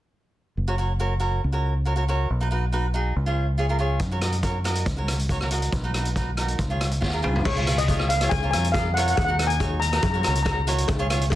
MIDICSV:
0, 0, Header, 1, 5, 480
1, 0, Start_track
1, 0, Key_signature, 6, "major"
1, 0, Tempo, 430416
1, 629, Time_signature, 4, 2, 24, 8
1, 12660, End_track
2, 0, Start_track
2, 0, Title_t, "Steel pan"
2, 0, Program_c, 0, 114
2, 8314, Note_on_c, 0, 73, 80
2, 8678, Note_on_c, 0, 75, 86
2, 8690, Note_off_c, 0, 73, 0
2, 9021, Note_on_c, 0, 77, 81
2, 9047, Note_off_c, 0, 75, 0
2, 9132, Note_off_c, 0, 77, 0
2, 9249, Note_on_c, 0, 80, 93
2, 9473, Note_off_c, 0, 80, 0
2, 9487, Note_on_c, 0, 80, 89
2, 9601, Note_off_c, 0, 80, 0
2, 9724, Note_on_c, 0, 77, 88
2, 9967, Note_on_c, 0, 78, 89
2, 9987, Note_off_c, 0, 77, 0
2, 10037, Note_off_c, 0, 78, 0
2, 10051, Note_on_c, 0, 78, 63
2, 10127, Note_off_c, 0, 78, 0
2, 10140, Note_on_c, 0, 78, 73
2, 10202, Note_off_c, 0, 78, 0
2, 10216, Note_on_c, 0, 78, 69
2, 10298, Note_off_c, 0, 78, 0
2, 10311, Note_on_c, 0, 78, 84
2, 10365, Note_off_c, 0, 78, 0
2, 10379, Note_on_c, 0, 78, 73
2, 10473, Note_off_c, 0, 78, 0
2, 10560, Note_on_c, 0, 80, 103
2, 10925, Note_on_c, 0, 82, 93
2, 10946, Note_off_c, 0, 80, 0
2, 11017, Note_off_c, 0, 82, 0
2, 11036, Note_on_c, 0, 82, 65
2, 11092, Note_off_c, 0, 82, 0
2, 11106, Note_on_c, 0, 82, 68
2, 11174, Note_off_c, 0, 82, 0
2, 11187, Note_on_c, 0, 82, 63
2, 11257, Note_off_c, 0, 82, 0
2, 11271, Note_on_c, 0, 82, 66
2, 11357, Note_off_c, 0, 82, 0
2, 11378, Note_on_c, 0, 82, 60
2, 11443, Note_off_c, 0, 82, 0
2, 11456, Note_on_c, 0, 82, 71
2, 11522, Note_off_c, 0, 82, 0
2, 11536, Note_on_c, 0, 82, 60
2, 11615, Note_off_c, 0, 82, 0
2, 11627, Note_on_c, 0, 82, 72
2, 11703, Note_off_c, 0, 82, 0
2, 11728, Note_on_c, 0, 82, 63
2, 11798, Note_off_c, 0, 82, 0
2, 12660, End_track
3, 0, Start_track
3, 0, Title_t, "Cavaquinho"
3, 0, Program_c, 1, 24
3, 754, Note_on_c, 1, 66, 65
3, 759, Note_on_c, 1, 70, 54
3, 767, Note_on_c, 1, 73, 58
3, 824, Note_off_c, 1, 66, 0
3, 827, Note_off_c, 1, 70, 0
3, 828, Note_off_c, 1, 73, 0
3, 870, Note_on_c, 1, 66, 63
3, 877, Note_on_c, 1, 70, 46
3, 884, Note_on_c, 1, 73, 70
3, 1017, Note_off_c, 1, 66, 0
3, 1017, Note_off_c, 1, 70, 0
3, 1023, Note_off_c, 1, 73, 0
3, 1111, Note_on_c, 1, 66, 66
3, 1116, Note_on_c, 1, 70, 60
3, 1121, Note_on_c, 1, 73, 72
3, 1256, Note_off_c, 1, 66, 0
3, 1259, Note_off_c, 1, 70, 0
3, 1262, Note_off_c, 1, 73, 0
3, 1335, Note_on_c, 1, 66, 65
3, 1342, Note_on_c, 1, 70, 72
3, 1351, Note_on_c, 1, 73, 71
3, 1559, Note_off_c, 1, 66, 0
3, 1564, Note_off_c, 1, 70, 0
3, 1566, Note_off_c, 1, 73, 0
3, 1701, Note_on_c, 1, 66, 56
3, 1708, Note_on_c, 1, 70, 51
3, 1714, Note_on_c, 1, 73, 64
3, 1923, Note_off_c, 1, 66, 0
3, 1925, Note_off_c, 1, 70, 0
3, 1929, Note_off_c, 1, 73, 0
3, 2068, Note_on_c, 1, 66, 60
3, 2077, Note_on_c, 1, 70, 60
3, 2084, Note_on_c, 1, 73, 66
3, 2144, Note_off_c, 1, 66, 0
3, 2149, Note_off_c, 1, 70, 0
3, 2150, Note_off_c, 1, 73, 0
3, 2183, Note_on_c, 1, 66, 66
3, 2194, Note_on_c, 1, 70, 58
3, 2199, Note_on_c, 1, 73, 69
3, 2260, Note_off_c, 1, 66, 0
3, 2265, Note_off_c, 1, 70, 0
3, 2267, Note_off_c, 1, 73, 0
3, 2325, Note_on_c, 1, 66, 70
3, 2330, Note_on_c, 1, 70, 58
3, 2334, Note_on_c, 1, 73, 81
3, 2536, Note_off_c, 1, 66, 0
3, 2536, Note_off_c, 1, 70, 0
3, 2540, Note_off_c, 1, 73, 0
3, 2684, Note_on_c, 1, 63, 63
3, 2689, Note_on_c, 1, 66, 55
3, 2704, Note_on_c, 1, 71, 71
3, 2750, Note_off_c, 1, 63, 0
3, 2753, Note_off_c, 1, 66, 0
3, 2761, Note_off_c, 1, 71, 0
3, 2797, Note_on_c, 1, 63, 58
3, 2807, Note_on_c, 1, 66, 64
3, 2810, Note_on_c, 1, 71, 65
3, 2941, Note_off_c, 1, 63, 0
3, 2946, Note_off_c, 1, 71, 0
3, 2947, Note_off_c, 1, 66, 0
3, 3039, Note_on_c, 1, 63, 62
3, 3045, Note_on_c, 1, 66, 57
3, 3050, Note_on_c, 1, 71, 79
3, 3182, Note_off_c, 1, 63, 0
3, 3185, Note_off_c, 1, 66, 0
3, 3188, Note_off_c, 1, 71, 0
3, 3277, Note_on_c, 1, 63, 76
3, 3286, Note_on_c, 1, 66, 58
3, 3296, Note_on_c, 1, 68, 76
3, 3494, Note_off_c, 1, 63, 0
3, 3495, Note_off_c, 1, 66, 0
3, 3502, Note_off_c, 1, 68, 0
3, 3638, Note_on_c, 1, 65, 60
3, 3647, Note_on_c, 1, 68, 44
3, 3653, Note_on_c, 1, 73, 70
3, 3855, Note_off_c, 1, 65, 0
3, 3856, Note_off_c, 1, 68, 0
3, 3861, Note_off_c, 1, 73, 0
3, 3990, Note_on_c, 1, 65, 65
3, 4000, Note_on_c, 1, 68, 59
3, 4006, Note_on_c, 1, 73, 76
3, 4066, Note_off_c, 1, 65, 0
3, 4071, Note_off_c, 1, 68, 0
3, 4074, Note_off_c, 1, 73, 0
3, 4118, Note_on_c, 1, 65, 66
3, 4124, Note_on_c, 1, 68, 54
3, 4128, Note_on_c, 1, 70, 69
3, 4190, Note_off_c, 1, 65, 0
3, 4190, Note_off_c, 1, 68, 0
3, 4194, Note_off_c, 1, 70, 0
3, 4222, Note_on_c, 1, 65, 69
3, 4233, Note_on_c, 1, 68, 66
3, 4241, Note_on_c, 1, 73, 67
3, 4446, Note_off_c, 1, 65, 0
3, 4452, Note_off_c, 1, 68, 0
3, 4454, Note_off_c, 1, 73, 0
3, 4588, Note_on_c, 1, 66, 62
3, 4597, Note_on_c, 1, 70, 54
3, 4599, Note_on_c, 1, 73, 74
3, 4665, Note_off_c, 1, 66, 0
3, 4667, Note_off_c, 1, 70, 0
3, 4670, Note_off_c, 1, 73, 0
3, 4701, Note_on_c, 1, 66, 63
3, 4707, Note_on_c, 1, 70, 55
3, 4714, Note_on_c, 1, 75, 76
3, 4855, Note_off_c, 1, 66, 0
3, 4858, Note_off_c, 1, 70, 0
3, 4862, Note_off_c, 1, 75, 0
3, 4937, Note_on_c, 1, 66, 64
3, 4946, Note_on_c, 1, 70, 65
3, 4952, Note_on_c, 1, 73, 75
3, 5094, Note_off_c, 1, 66, 0
3, 5098, Note_off_c, 1, 70, 0
3, 5101, Note_off_c, 1, 73, 0
3, 5179, Note_on_c, 1, 66, 69
3, 5187, Note_on_c, 1, 70, 67
3, 5197, Note_on_c, 1, 75, 83
3, 5405, Note_off_c, 1, 66, 0
3, 5409, Note_off_c, 1, 70, 0
3, 5415, Note_off_c, 1, 75, 0
3, 5539, Note_on_c, 1, 66, 66
3, 5552, Note_on_c, 1, 70, 47
3, 5558, Note_on_c, 1, 73, 68
3, 5768, Note_off_c, 1, 66, 0
3, 5769, Note_off_c, 1, 70, 0
3, 5775, Note_off_c, 1, 73, 0
3, 5910, Note_on_c, 1, 66, 67
3, 5920, Note_on_c, 1, 70, 46
3, 5925, Note_on_c, 1, 73, 73
3, 5989, Note_off_c, 1, 66, 0
3, 5991, Note_off_c, 1, 70, 0
3, 5996, Note_off_c, 1, 73, 0
3, 6043, Note_on_c, 1, 66, 66
3, 6053, Note_on_c, 1, 70, 56
3, 6054, Note_on_c, 1, 73, 65
3, 6113, Note_off_c, 1, 66, 0
3, 6117, Note_off_c, 1, 73, 0
3, 6118, Note_off_c, 1, 70, 0
3, 6150, Note_on_c, 1, 66, 71
3, 6161, Note_on_c, 1, 70, 54
3, 6164, Note_on_c, 1, 75, 77
3, 6373, Note_off_c, 1, 66, 0
3, 6375, Note_off_c, 1, 70, 0
3, 6378, Note_off_c, 1, 75, 0
3, 6509, Note_on_c, 1, 63, 69
3, 6516, Note_on_c, 1, 66, 58
3, 6524, Note_on_c, 1, 71, 61
3, 6586, Note_off_c, 1, 63, 0
3, 6590, Note_off_c, 1, 66, 0
3, 6591, Note_off_c, 1, 71, 0
3, 6625, Note_on_c, 1, 63, 61
3, 6631, Note_on_c, 1, 66, 60
3, 6642, Note_on_c, 1, 71, 68
3, 6779, Note_off_c, 1, 63, 0
3, 6782, Note_off_c, 1, 66, 0
3, 6787, Note_off_c, 1, 71, 0
3, 6872, Note_on_c, 1, 63, 66
3, 6881, Note_on_c, 1, 66, 54
3, 6881, Note_on_c, 1, 71, 81
3, 7022, Note_off_c, 1, 63, 0
3, 7024, Note_off_c, 1, 66, 0
3, 7026, Note_off_c, 1, 71, 0
3, 7115, Note_on_c, 1, 63, 79
3, 7127, Note_on_c, 1, 66, 72
3, 7127, Note_on_c, 1, 70, 75
3, 7334, Note_off_c, 1, 63, 0
3, 7339, Note_off_c, 1, 70, 0
3, 7340, Note_off_c, 1, 66, 0
3, 7472, Note_on_c, 1, 65, 62
3, 7479, Note_on_c, 1, 68, 61
3, 7484, Note_on_c, 1, 73, 62
3, 7693, Note_off_c, 1, 65, 0
3, 7697, Note_off_c, 1, 68, 0
3, 7697, Note_off_c, 1, 73, 0
3, 7814, Note_on_c, 1, 65, 62
3, 7821, Note_on_c, 1, 68, 47
3, 7828, Note_on_c, 1, 73, 70
3, 7901, Note_off_c, 1, 65, 0
3, 7902, Note_off_c, 1, 68, 0
3, 7907, Note_off_c, 1, 73, 0
3, 7945, Note_on_c, 1, 65, 60
3, 7950, Note_on_c, 1, 68, 55
3, 7956, Note_on_c, 1, 70, 69
3, 8024, Note_off_c, 1, 65, 0
3, 8027, Note_off_c, 1, 68, 0
3, 8030, Note_off_c, 1, 70, 0
3, 8057, Note_on_c, 1, 65, 72
3, 8059, Note_on_c, 1, 68, 61
3, 8068, Note_on_c, 1, 71, 68
3, 8285, Note_off_c, 1, 65, 0
3, 8287, Note_off_c, 1, 68, 0
3, 8288, Note_off_c, 1, 71, 0
3, 8439, Note_on_c, 1, 65, 69
3, 8448, Note_on_c, 1, 68, 58
3, 8455, Note_on_c, 1, 73, 83
3, 8511, Note_off_c, 1, 65, 0
3, 8513, Note_off_c, 1, 68, 0
3, 8519, Note_off_c, 1, 73, 0
3, 8555, Note_on_c, 1, 65, 69
3, 8564, Note_on_c, 1, 68, 60
3, 8569, Note_on_c, 1, 73, 77
3, 8704, Note_off_c, 1, 65, 0
3, 8705, Note_off_c, 1, 68, 0
3, 8710, Note_off_c, 1, 73, 0
3, 8795, Note_on_c, 1, 65, 67
3, 8805, Note_on_c, 1, 68, 69
3, 8809, Note_on_c, 1, 73, 78
3, 9013, Note_off_c, 1, 65, 0
3, 9018, Note_off_c, 1, 68, 0
3, 9020, Note_off_c, 1, 73, 0
3, 9160, Note_on_c, 1, 65, 76
3, 9166, Note_on_c, 1, 68, 71
3, 9177, Note_on_c, 1, 73, 80
3, 9278, Note_off_c, 1, 65, 0
3, 9281, Note_off_c, 1, 68, 0
3, 9286, Note_off_c, 1, 73, 0
3, 9398, Note_on_c, 1, 65, 67
3, 9406, Note_on_c, 1, 70, 47
3, 9413, Note_on_c, 1, 73, 66
3, 9470, Note_off_c, 1, 65, 0
3, 9472, Note_off_c, 1, 70, 0
3, 9477, Note_off_c, 1, 73, 0
3, 9520, Note_on_c, 1, 65, 76
3, 9527, Note_on_c, 1, 70, 70
3, 9533, Note_on_c, 1, 73, 86
3, 9664, Note_off_c, 1, 65, 0
3, 9668, Note_off_c, 1, 70, 0
3, 9671, Note_off_c, 1, 73, 0
3, 9773, Note_on_c, 1, 65, 61
3, 9779, Note_on_c, 1, 70, 47
3, 9792, Note_on_c, 1, 75, 73
3, 9911, Note_off_c, 1, 65, 0
3, 9912, Note_off_c, 1, 70, 0
3, 9920, Note_off_c, 1, 75, 0
3, 10002, Note_on_c, 1, 65, 78
3, 10007, Note_on_c, 1, 70, 69
3, 10013, Note_on_c, 1, 73, 85
3, 10215, Note_off_c, 1, 65, 0
3, 10218, Note_off_c, 1, 70, 0
3, 10220, Note_off_c, 1, 73, 0
3, 10350, Note_on_c, 1, 63, 65
3, 10355, Note_on_c, 1, 66, 66
3, 10366, Note_on_c, 1, 70, 73
3, 10424, Note_off_c, 1, 63, 0
3, 10426, Note_off_c, 1, 66, 0
3, 10432, Note_off_c, 1, 70, 0
3, 10471, Note_on_c, 1, 63, 71
3, 10476, Note_on_c, 1, 66, 62
3, 10484, Note_on_c, 1, 70, 78
3, 10618, Note_off_c, 1, 63, 0
3, 10621, Note_off_c, 1, 66, 0
3, 10624, Note_off_c, 1, 70, 0
3, 10700, Note_on_c, 1, 63, 69
3, 10707, Note_on_c, 1, 66, 67
3, 10716, Note_on_c, 1, 73, 84
3, 10923, Note_off_c, 1, 63, 0
3, 10926, Note_off_c, 1, 66, 0
3, 10931, Note_off_c, 1, 73, 0
3, 11069, Note_on_c, 1, 63, 76
3, 11075, Note_on_c, 1, 66, 64
3, 11080, Note_on_c, 1, 70, 80
3, 11189, Note_off_c, 1, 63, 0
3, 11192, Note_off_c, 1, 66, 0
3, 11195, Note_off_c, 1, 70, 0
3, 11306, Note_on_c, 1, 66, 68
3, 11314, Note_on_c, 1, 70, 61
3, 11323, Note_on_c, 1, 73, 65
3, 11381, Note_off_c, 1, 66, 0
3, 11386, Note_off_c, 1, 70, 0
3, 11386, Note_off_c, 1, 73, 0
3, 11410, Note_on_c, 1, 66, 74
3, 11417, Note_on_c, 1, 70, 70
3, 11424, Note_on_c, 1, 73, 84
3, 11566, Note_off_c, 1, 66, 0
3, 11570, Note_off_c, 1, 70, 0
3, 11573, Note_off_c, 1, 73, 0
3, 11652, Note_on_c, 1, 66, 66
3, 11661, Note_on_c, 1, 70, 62
3, 11669, Note_on_c, 1, 73, 78
3, 11807, Note_off_c, 1, 66, 0
3, 11811, Note_off_c, 1, 70, 0
3, 11815, Note_off_c, 1, 73, 0
3, 11900, Note_on_c, 1, 66, 86
3, 11910, Note_on_c, 1, 70, 77
3, 11914, Note_on_c, 1, 73, 95
3, 12123, Note_off_c, 1, 66, 0
3, 12125, Note_off_c, 1, 70, 0
3, 12128, Note_off_c, 1, 73, 0
3, 12255, Note_on_c, 1, 65, 79
3, 12260, Note_on_c, 1, 68, 80
3, 12265, Note_on_c, 1, 73, 91
3, 12334, Note_off_c, 1, 65, 0
3, 12336, Note_off_c, 1, 68, 0
3, 12337, Note_off_c, 1, 73, 0
3, 12379, Note_on_c, 1, 65, 83
3, 12384, Note_on_c, 1, 68, 77
3, 12396, Note_on_c, 1, 73, 97
3, 12529, Note_off_c, 1, 65, 0
3, 12532, Note_off_c, 1, 68, 0
3, 12538, Note_off_c, 1, 73, 0
3, 12620, Note_on_c, 1, 65, 73
3, 12625, Note_on_c, 1, 68, 68
3, 12660, Note_off_c, 1, 65, 0
3, 12660, Note_off_c, 1, 68, 0
3, 12660, End_track
4, 0, Start_track
4, 0, Title_t, "Fingered electric bass"
4, 0, Program_c, 2, 33
4, 639, Note_on_c, 2, 30, 73
4, 1551, Note_off_c, 2, 30, 0
4, 1608, Note_on_c, 2, 37, 85
4, 2517, Note_off_c, 2, 37, 0
4, 2567, Note_on_c, 2, 35, 72
4, 3477, Note_off_c, 2, 35, 0
4, 3526, Note_on_c, 2, 37, 87
4, 4438, Note_off_c, 2, 37, 0
4, 4468, Note_on_c, 2, 42, 72
4, 5389, Note_off_c, 2, 42, 0
4, 5427, Note_on_c, 2, 37, 79
4, 6350, Note_off_c, 2, 37, 0
4, 6389, Note_on_c, 2, 35, 77
4, 7310, Note_off_c, 2, 35, 0
4, 7352, Note_on_c, 2, 37, 79
4, 7800, Note_off_c, 2, 37, 0
4, 7837, Note_on_c, 2, 39, 71
4, 8054, Note_off_c, 2, 39, 0
4, 8090, Note_on_c, 2, 37, 65
4, 8301, Note_off_c, 2, 37, 0
4, 8315, Note_on_c, 2, 37, 88
4, 9231, Note_off_c, 2, 37, 0
4, 9279, Note_on_c, 2, 37, 84
4, 9500, Note_off_c, 2, 37, 0
4, 9540, Note_on_c, 2, 41, 92
4, 10202, Note_off_c, 2, 41, 0
4, 10240, Note_on_c, 2, 39, 100
4, 11150, Note_off_c, 2, 39, 0
4, 11190, Note_on_c, 2, 42, 90
4, 11413, Note_off_c, 2, 42, 0
4, 11459, Note_on_c, 2, 37, 94
4, 12119, Note_off_c, 2, 37, 0
4, 12146, Note_on_c, 2, 37, 83
4, 12660, Note_off_c, 2, 37, 0
4, 12660, End_track
5, 0, Start_track
5, 0, Title_t, "Drums"
5, 4455, Note_on_c, 9, 42, 53
5, 4459, Note_on_c, 9, 36, 91
5, 4566, Note_off_c, 9, 42, 0
5, 4571, Note_off_c, 9, 36, 0
5, 4700, Note_on_c, 9, 37, 71
5, 4700, Note_on_c, 9, 42, 63
5, 4811, Note_off_c, 9, 37, 0
5, 4811, Note_off_c, 9, 42, 0
5, 4821, Note_on_c, 9, 42, 51
5, 4933, Note_off_c, 9, 42, 0
5, 4941, Note_on_c, 9, 36, 70
5, 4941, Note_on_c, 9, 42, 50
5, 5052, Note_off_c, 9, 42, 0
5, 5053, Note_off_c, 9, 36, 0
5, 5186, Note_on_c, 9, 37, 65
5, 5186, Note_on_c, 9, 42, 65
5, 5298, Note_off_c, 9, 37, 0
5, 5298, Note_off_c, 9, 42, 0
5, 5301, Note_on_c, 9, 42, 54
5, 5412, Note_off_c, 9, 42, 0
5, 5420, Note_on_c, 9, 42, 57
5, 5421, Note_on_c, 9, 36, 102
5, 5531, Note_off_c, 9, 42, 0
5, 5533, Note_off_c, 9, 36, 0
5, 5666, Note_on_c, 9, 37, 73
5, 5666, Note_on_c, 9, 42, 74
5, 5777, Note_off_c, 9, 37, 0
5, 5777, Note_off_c, 9, 42, 0
5, 5791, Note_on_c, 9, 42, 55
5, 5903, Note_off_c, 9, 42, 0
5, 5903, Note_on_c, 9, 36, 72
5, 5905, Note_on_c, 9, 42, 56
5, 6014, Note_off_c, 9, 36, 0
5, 6016, Note_off_c, 9, 42, 0
5, 6029, Note_on_c, 9, 37, 66
5, 6140, Note_off_c, 9, 37, 0
5, 6140, Note_on_c, 9, 42, 78
5, 6252, Note_off_c, 9, 42, 0
5, 6268, Note_on_c, 9, 42, 58
5, 6379, Note_off_c, 9, 42, 0
5, 6384, Note_on_c, 9, 36, 97
5, 6385, Note_on_c, 9, 42, 58
5, 6496, Note_off_c, 9, 36, 0
5, 6497, Note_off_c, 9, 42, 0
5, 6626, Note_on_c, 9, 37, 71
5, 6626, Note_on_c, 9, 42, 68
5, 6737, Note_off_c, 9, 37, 0
5, 6737, Note_off_c, 9, 42, 0
5, 6749, Note_on_c, 9, 42, 53
5, 6860, Note_off_c, 9, 42, 0
5, 6867, Note_on_c, 9, 36, 72
5, 6871, Note_on_c, 9, 42, 52
5, 6979, Note_off_c, 9, 36, 0
5, 6982, Note_off_c, 9, 42, 0
5, 7106, Note_on_c, 9, 37, 65
5, 7106, Note_on_c, 9, 42, 65
5, 7217, Note_off_c, 9, 37, 0
5, 7217, Note_off_c, 9, 42, 0
5, 7228, Note_on_c, 9, 42, 50
5, 7340, Note_off_c, 9, 42, 0
5, 7345, Note_on_c, 9, 42, 54
5, 7347, Note_on_c, 9, 36, 96
5, 7456, Note_off_c, 9, 42, 0
5, 7459, Note_off_c, 9, 36, 0
5, 7592, Note_on_c, 9, 37, 80
5, 7592, Note_on_c, 9, 42, 67
5, 7703, Note_off_c, 9, 37, 0
5, 7703, Note_off_c, 9, 42, 0
5, 7710, Note_on_c, 9, 42, 50
5, 7822, Note_off_c, 9, 42, 0
5, 7831, Note_on_c, 9, 36, 72
5, 7832, Note_on_c, 9, 38, 48
5, 7942, Note_off_c, 9, 36, 0
5, 7944, Note_off_c, 9, 38, 0
5, 8071, Note_on_c, 9, 45, 69
5, 8183, Note_off_c, 9, 45, 0
5, 8203, Note_on_c, 9, 43, 64
5, 8311, Note_on_c, 9, 49, 104
5, 8312, Note_on_c, 9, 36, 114
5, 8314, Note_off_c, 9, 43, 0
5, 8316, Note_on_c, 9, 56, 88
5, 8422, Note_off_c, 9, 49, 0
5, 8424, Note_off_c, 9, 36, 0
5, 8427, Note_off_c, 9, 56, 0
5, 8553, Note_on_c, 9, 37, 78
5, 8553, Note_on_c, 9, 42, 77
5, 8665, Note_off_c, 9, 37, 0
5, 8665, Note_off_c, 9, 42, 0
5, 8678, Note_on_c, 9, 42, 61
5, 8789, Note_off_c, 9, 42, 0
5, 8791, Note_on_c, 9, 36, 80
5, 8792, Note_on_c, 9, 42, 69
5, 8796, Note_on_c, 9, 56, 69
5, 8903, Note_off_c, 9, 36, 0
5, 8904, Note_off_c, 9, 42, 0
5, 8908, Note_off_c, 9, 56, 0
5, 8915, Note_on_c, 9, 37, 72
5, 9026, Note_off_c, 9, 37, 0
5, 9030, Note_on_c, 9, 42, 78
5, 9142, Note_off_c, 9, 42, 0
5, 9152, Note_on_c, 9, 37, 73
5, 9152, Note_on_c, 9, 42, 65
5, 9264, Note_off_c, 9, 37, 0
5, 9264, Note_off_c, 9, 42, 0
5, 9270, Note_on_c, 9, 56, 81
5, 9272, Note_on_c, 9, 36, 111
5, 9276, Note_on_c, 9, 42, 67
5, 9381, Note_off_c, 9, 56, 0
5, 9384, Note_off_c, 9, 36, 0
5, 9387, Note_off_c, 9, 42, 0
5, 9515, Note_on_c, 9, 37, 92
5, 9515, Note_on_c, 9, 42, 88
5, 9627, Note_off_c, 9, 37, 0
5, 9627, Note_off_c, 9, 42, 0
5, 9639, Note_on_c, 9, 42, 61
5, 9743, Note_on_c, 9, 56, 71
5, 9751, Note_off_c, 9, 42, 0
5, 9752, Note_on_c, 9, 36, 88
5, 9757, Note_on_c, 9, 37, 84
5, 9757, Note_on_c, 9, 42, 68
5, 9855, Note_off_c, 9, 56, 0
5, 9863, Note_off_c, 9, 36, 0
5, 9868, Note_off_c, 9, 37, 0
5, 9868, Note_off_c, 9, 42, 0
5, 10001, Note_on_c, 9, 42, 94
5, 10112, Note_off_c, 9, 42, 0
5, 10121, Note_on_c, 9, 42, 65
5, 10230, Note_on_c, 9, 56, 101
5, 10232, Note_off_c, 9, 42, 0
5, 10233, Note_on_c, 9, 36, 122
5, 10242, Note_on_c, 9, 42, 61
5, 10341, Note_off_c, 9, 56, 0
5, 10345, Note_off_c, 9, 36, 0
5, 10353, Note_off_c, 9, 42, 0
5, 10474, Note_on_c, 9, 37, 82
5, 10474, Note_on_c, 9, 42, 88
5, 10585, Note_off_c, 9, 37, 0
5, 10585, Note_off_c, 9, 42, 0
5, 10593, Note_on_c, 9, 42, 61
5, 10704, Note_off_c, 9, 42, 0
5, 10709, Note_on_c, 9, 36, 87
5, 10711, Note_on_c, 9, 56, 68
5, 10713, Note_on_c, 9, 42, 63
5, 10821, Note_off_c, 9, 36, 0
5, 10823, Note_off_c, 9, 56, 0
5, 10825, Note_off_c, 9, 42, 0
5, 10949, Note_on_c, 9, 42, 72
5, 11061, Note_off_c, 9, 42, 0
5, 11070, Note_on_c, 9, 37, 79
5, 11070, Note_on_c, 9, 42, 60
5, 11180, Note_off_c, 9, 42, 0
5, 11180, Note_on_c, 9, 42, 64
5, 11182, Note_off_c, 9, 37, 0
5, 11184, Note_on_c, 9, 56, 90
5, 11185, Note_on_c, 9, 36, 110
5, 11291, Note_off_c, 9, 42, 0
5, 11295, Note_off_c, 9, 56, 0
5, 11296, Note_off_c, 9, 36, 0
5, 11422, Note_on_c, 9, 37, 80
5, 11422, Note_on_c, 9, 42, 81
5, 11533, Note_off_c, 9, 37, 0
5, 11533, Note_off_c, 9, 42, 0
5, 11546, Note_on_c, 9, 42, 58
5, 11658, Note_off_c, 9, 42, 0
5, 11662, Note_on_c, 9, 36, 95
5, 11662, Note_on_c, 9, 37, 82
5, 11662, Note_on_c, 9, 42, 62
5, 11665, Note_on_c, 9, 56, 75
5, 11773, Note_off_c, 9, 36, 0
5, 11774, Note_off_c, 9, 37, 0
5, 11774, Note_off_c, 9, 42, 0
5, 11777, Note_off_c, 9, 56, 0
5, 11904, Note_on_c, 9, 42, 86
5, 12015, Note_off_c, 9, 42, 0
5, 12025, Note_on_c, 9, 42, 68
5, 12133, Note_on_c, 9, 56, 87
5, 12136, Note_off_c, 9, 42, 0
5, 12140, Note_on_c, 9, 36, 118
5, 12141, Note_on_c, 9, 42, 62
5, 12244, Note_off_c, 9, 56, 0
5, 12252, Note_off_c, 9, 36, 0
5, 12252, Note_off_c, 9, 42, 0
5, 12381, Note_on_c, 9, 37, 85
5, 12381, Note_on_c, 9, 42, 82
5, 12492, Note_off_c, 9, 37, 0
5, 12492, Note_off_c, 9, 42, 0
5, 12506, Note_on_c, 9, 42, 61
5, 12604, Note_on_c, 9, 56, 66
5, 12618, Note_off_c, 9, 42, 0
5, 12622, Note_on_c, 9, 36, 83
5, 12660, Note_off_c, 9, 36, 0
5, 12660, Note_off_c, 9, 56, 0
5, 12660, End_track
0, 0, End_of_file